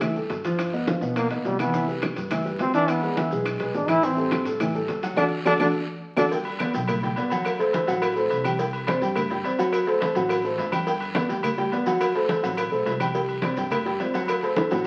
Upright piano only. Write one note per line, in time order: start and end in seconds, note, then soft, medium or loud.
0.02 0.13 E3 medium
0.02 0.13 E4 medium
0.02 0.14 E5 medium
0.16 0.39 G3 medium
0.16 0.40 G4 medium
0.16 0.39 A4 medium
0.45 0.68 F3 medium
0.45 0.68 F4 loud
0.45 0.69 F5 medium
0.73 0.85 B3 medium
0.73 0.85 B4 medium
0.73 0.85 D#5 medium
0.87 0.99 F3 medium
0.87 0.99 F4 medium
0.87 1.00 F5 medium
1.01 1.25 B3 medium
1.01 1.25 B4 medium
1.01 1.26 D#5 medium
1.31 1.54 B3 medium
1.31 1.54 B4 medium
1.31 1.55 D#5 medium
1.59 1.71 E3 medium
1.59 1.71 E4 medium
1.59 1.71 E5 medium
1.74 1.85 E3 medium
1.74 1.86 E4 medium
1.74 1.86 E5 medium
1.88 2.12 G3 medium
1.88 2.12 G4 medium
1.88 2.12 B4 medium
2.16 2.28 G3 medium
2.16 2.28 G4 medium
2.16 2.28 B4 medium
2.31 2.43 E3 medium
2.31 2.43 E4 medium
2.31 2.43 E5 medium
2.45 2.69 G3 medium
2.45 2.69 G4 medium
2.45 2.69 B4 medium
2.74 2.98 E3 loud
2.74 2.98 E4 loud
2.74 2.98 E5 medium
3.03 3.15 G#3 medium
3.03 3.15 G#4 medium
3.03 3.15 B4 medium
3.17 3.29 E3 medium
3.17 3.29 E4 medium
3.17 3.29 E5 medium
3.32 3.55 G#3 medium
3.32 3.56 G#4 medium
3.32 3.56 B4 medium
3.60 3.83 G#3 medium
3.60 3.84 G#4 medium
3.60 3.84 B4 medium
3.89 4.01 E3 medium
3.89 4.01 E4 medium
3.89 4.01 E5 medium
4.03 4.15 E3 medium
4.03 4.15 E4 medium
4.03 4.15 E5 medium
4.18 4.41 G3 medium
4.18 4.41 G4 medium
4.18 4.41 A4 medium
4.46 4.58 G3 medium
4.46 4.58 G4 medium
4.46 4.58 A4 medium
4.60 4.72 E3 medium
4.60 4.72 E4 medium
4.60 4.72 E5 medium
4.75 4.98 G3 medium
4.75 4.98 G4 medium
4.75 4.98 A4 medium
5.03 5.15 F#3 medium
5.03 5.15 F#4 medium
5.03 5.15 F#5 medium
5.17 5.26 D4 loud
5.17 5.26 F#4 loud
5.17 5.27 A4 loud
5.46 5.55 D4 loud
5.46 5.55 F#4 loud
5.46 5.55 A4 loud
5.60 5.70 D4 loud
5.60 5.69 F#4 loud
5.60 5.69 A4 loud
6.17 6.26 D4 loud
6.17 6.26 F#4 loud
6.17 6.26 A4 loud
6.32 6.55 G3 medium
6.32 6.55 G4 medium
6.32 6.56 G5 medium
6.61 6.72 B3 medium
6.61 6.72 B4 medium
6.61 6.72 D5 medium
6.74 6.98 G3 medium
6.74 6.98 G4 medium
6.74 6.98 G5 medium
7.03 7.15 G3 medium
7.03 7.15 G4 medium
7.03 7.15 G5 medium
7.17 7.29 B3 medium
7.17 7.29 B4 medium
7.17 7.29 D5 medium
7.32 7.55 F#3 loud
7.32 7.55 F#4 loud
7.32 7.55 F#5 medium
7.59 7.71 A3 medium
7.59 7.71 A4 medium
7.59 7.71 C5 medium
7.73 7.85 A3 medium
7.73 7.86 A4 medium
7.73 7.86 C5 medium
7.87 8.11 F#3 medium
7.87 8.11 F#4 medium
7.87 8.11 F#5 loud
8.16 8.40 A3 medium
8.16 8.40 A4 medium
8.16 8.40 C5 medium
8.45 8.57 G3 medium
8.45 8.57 G4 medium
8.45 8.57 G5 loud
8.59 8.83 G3 medium
8.59 8.83 G4 medium
8.59 8.83 G5 medium
8.88 8.99 C4 medium
8.88 8.99 C5 medium
8.88 8.99 D5 medium
9.02 9.25 G3 medium
9.02 9.25 G4 medium
9.02 9.26 G5 medium
9.31 9.42 G3 medium
9.31 9.43 G4 medium
9.31 9.43 G5 medium
9.44 9.56 C4 medium
9.44 9.56 C5 medium
9.44 9.57 D5 medium
9.59 9.82 F#3 medium
9.59 9.82 F#4 medium
9.59 9.82 F#5 medium
9.87 9.99 A3 medium
9.87 9.99 A4 medium
9.87 9.99 C5 medium
10.02 10.13 A3 medium
10.02 10.14 A4 medium
10.16 10.39 F#3 medium
10.16 10.39 F#4 medium
10.16 10.39 F#5 medium
10.44 10.67 A3 medium
10.44 10.68 A4 medium
10.44 10.68 C5 medium
10.72 10.84 G3 medium
10.72 10.84 G4 medium
10.72 10.84 G5 medium
10.87 11.10 G3 medium
10.87 11.10 G4 medium
10.87 11.11 G5 medium
11.15 11.27 B3 medium
11.15 11.27 B4 medium
11.15 11.27 D5 medium
11.29 11.52 G3 medium
11.29 11.53 G4 medium
11.29 11.53 G5 medium
11.58 11.69 G3 loud
11.58 11.70 G4 medium
11.58 11.70 G5 loud
11.72 11.84 B3 medium
11.72 11.84 B4 medium
11.72 11.84 D5 medium
11.86 12.10 F#3 medium
11.86 12.10 F#4 loud
11.86 12.10 F#5 medium
12.15 12.26 A3 medium
12.15 12.27 A4 medium
12.15 12.27 C5 medium
12.29 12.40 A3 medium
12.29 12.41 A4 medium
12.29 12.41 C5 medium
12.43 12.66 F#3 medium
12.43 12.66 F#4 loud
12.43 12.67 F#5 medium
12.72 12.95 A3 medium
12.72 12.95 A4 medium
12.72 12.95 C5 medium
13.00 13.12 G3 loud
13.00 13.12 G4 medium
13.00 13.12 G5 loud
13.15 13.38 G3 medium
13.15 13.38 G4 medium
13.15 13.38 G5 medium
13.43 13.55 C4 medium
13.43 13.55 C5 medium
13.43 13.55 D5 medium
13.58 13.81 G3 medium
13.58 13.81 G4 loud
13.58 13.81 G5 medium
13.85 13.97 G3 medium
13.85 13.97 G4 medium
13.85 13.98 G5 medium
14.00 14.12 C4 medium
14.00 14.12 C5 medium
14.00 14.12 D5 medium
14.14 14.38 F#3 medium
14.14 14.38 F#4 loud
14.14 14.38 F#5 medium
14.43 14.54 A3 medium
14.43 14.55 A4 medium
14.43 14.55 C5 medium
14.57 14.68 A3 medium
14.57 14.69 A4 medium
14.57 14.69 C5 medium
14.71 14.87 F#3 medium
14.71 14.87 F#4 medium
14.71 14.87 F#5 medium